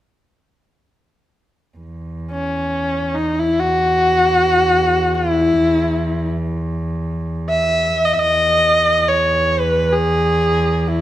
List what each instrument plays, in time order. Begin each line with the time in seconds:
1.78 cello E2
2.31 kamancheh C#4
3.14 kamancheh D#4
3.39 kamancheh E4
3.60 kamancheh F#4
5.14 kamancheh E4
7.49 kamancheh E5
8.04 kamancheh D#5
8.13 kamancheh E5
8.19 kamancheh D#5
8.23 cello E2
9.08 kamancheh C#5
9.60 kamancheh B4
9.92 kamancheh G#4
10.88 kamancheh E4